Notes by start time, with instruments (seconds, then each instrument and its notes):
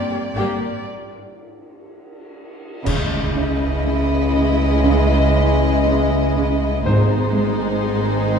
Already playing: cello section G2, grand piano C4 C5, violin section D5
0.11 cello section G2, viola section A#3, violin section G4
0.35 double bass section G1, cello section G2, viola section A#3, violin section G4
2.86 double bass section C#2, cello section C#3, trombone section E3 G#3, viola section G#3, french horn section C#4 D#5, violin section E4 D#5, concert bass drum, crash
3.36 cello section C#4
3.86 cello section C#3
4.35 cello section C#3, grand piano D#5
4.86 cello section C#3
5.36 cello section C#4
5.86 cello section C#4
6.37 cello section C#3
6.86 double bass section G#1, timpani G#2, cello section G#2, trombone section D#3 G#3, viola section G#3, french horn section C4 G#4, violin section D#4 C5, grand piano C5
7.36 cello section G#3
7.87 cello section G#2